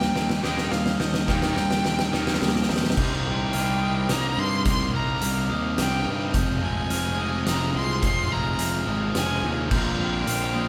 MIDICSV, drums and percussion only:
0, 0, Header, 1, 2, 480
1, 0, Start_track
1, 0, Key_signature, -3, "minor"
1, 0, Tempo, 561798
1, 1095, Time_signature, 3, 2, 24, 8
1, 9128, End_track
2, 0, Start_track
2, 0, Title_t, "Drums"
2, 11, Note_on_c, 9, 38, 99
2, 96, Note_off_c, 9, 38, 0
2, 133, Note_on_c, 9, 38, 101
2, 219, Note_off_c, 9, 38, 0
2, 252, Note_on_c, 9, 38, 105
2, 338, Note_off_c, 9, 38, 0
2, 373, Note_on_c, 9, 38, 96
2, 458, Note_off_c, 9, 38, 0
2, 493, Note_on_c, 9, 38, 100
2, 578, Note_off_c, 9, 38, 0
2, 612, Note_on_c, 9, 38, 108
2, 698, Note_off_c, 9, 38, 0
2, 733, Note_on_c, 9, 38, 100
2, 818, Note_off_c, 9, 38, 0
2, 854, Note_on_c, 9, 38, 104
2, 939, Note_off_c, 9, 38, 0
2, 974, Note_on_c, 9, 38, 110
2, 1060, Note_off_c, 9, 38, 0
2, 1096, Note_on_c, 9, 36, 106
2, 1096, Note_on_c, 9, 38, 99
2, 1181, Note_off_c, 9, 36, 0
2, 1181, Note_off_c, 9, 38, 0
2, 1216, Note_on_c, 9, 38, 103
2, 1301, Note_off_c, 9, 38, 0
2, 1335, Note_on_c, 9, 38, 92
2, 1421, Note_off_c, 9, 38, 0
2, 1458, Note_on_c, 9, 38, 106
2, 1543, Note_off_c, 9, 38, 0
2, 1579, Note_on_c, 9, 38, 109
2, 1665, Note_off_c, 9, 38, 0
2, 1699, Note_on_c, 9, 38, 121
2, 1784, Note_off_c, 9, 38, 0
2, 1822, Note_on_c, 9, 38, 106
2, 1908, Note_off_c, 9, 38, 0
2, 1941, Note_on_c, 9, 38, 114
2, 2001, Note_off_c, 9, 38, 0
2, 2001, Note_on_c, 9, 38, 108
2, 2065, Note_off_c, 9, 38, 0
2, 2065, Note_on_c, 9, 38, 123
2, 2121, Note_off_c, 9, 38, 0
2, 2121, Note_on_c, 9, 38, 123
2, 2182, Note_off_c, 9, 38, 0
2, 2182, Note_on_c, 9, 38, 101
2, 2240, Note_off_c, 9, 38, 0
2, 2240, Note_on_c, 9, 38, 107
2, 2299, Note_off_c, 9, 38, 0
2, 2299, Note_on_c, 9, 38, 107
2, 2358, Note_off_c, 9, 38, 0
2, 2358, Note_on_c, 9, 38, 120
2, 2418, Note_off_c, 9, 38, 0
2, 2418, Note_on_c, 9, 38, 113
2, 2478, Note_off_c, 9, 38, 0
2, 2478, Note_on_c, 9, 38, 117
2, 2538, Note_on_c, 9, 49, 121
2, 2540, Note_on_c, 9, 36, 107
2, 2564, Note_off_c, 9, 38, 0
2, 2624, Note_off_c, 9, 49, 0
2, 2626, Note_off_c, 9, 36, 0
2, 3017, Note_on_c, 9, 42, 80
2, 3102, Note_off_c, 9, 42, 0
2, 3498, Note_on_c, 9, 38, 102
2, 3498, Note_on_c, 9, 42, 98
2, 3583, Note_off_c, 9, 38, 0
2, 3583, Note_off_c, 9, 42, 0
2, 3977, Note_on_c, 9, 42, 84
2, 3979, Note_on_c, 9, 36, 118
2, 4062, Note_off_c, 9, 42, 0
2, 4064, Note_off_c, 9, 36, 0
2, 4457, Note_on_c, 9, 42, 93
2, 4542, Note_off_c, 9, 42, 0
2, 4939, Note_on_c, 9, 38, 106
2, 4939, Note_on_c, 9, 42, 92
2, 5024, Note_off_c, 9, 38, 0
2, 5024, Note_off_c, 9, 42, 0
2, 5417, Note_on_c, 9, 42, 82
2, 5420, Note_on_c, 9, 36, 117
2, 5502, Note_off_c, 9, 42, 0
2, 5505, Note_off_c, 9, 36, 0
2, 5899, Note_on_c, 9, 42, 86
2, 5984, Note_off_c, 9, 42, 0
2, 6380, Note_on_c, 9, 38, 100
2, 6380, Note_on_c, 9, 42, 87
2, 6465, Note_off_c, 9, 38, 0
2, 6465, Note_off_c, 9, 42, 0
2, 6857, Note_on_c, 9, 42, 77
2, 6860, Note_on_c, 9, 36, 109
2, 6943, Note_off_c, 9, 42, 0
2, 6945, Note_off_c, 9, 36, 0
2, 7338, Note_on_c, 9, 42, 85
2, 7423, Note_off_c, 9, 42, 0
2, 7818, Note_on_c, 9, 38, 100
2, 7818, Note_on_c, 9, 42, 89
2, 7904, Note_off_c, 9, 38, 0
2, 7904, Note_off_c, 9, 42, 0
2, 8296, Note_on_c, 9, 49, 108
2, 8298, Note_on_c, 9, 36, 117
2, 8381, Note_off_c, 9, 49, 0
2, 8384, Note_off_c, 9, 36, 0
2, 8778, Note_on_c, 9, 42, 91
2, 8863, Note_off_c, 9, 42, 0
2, 9128, End_track
0, 0, End_of_file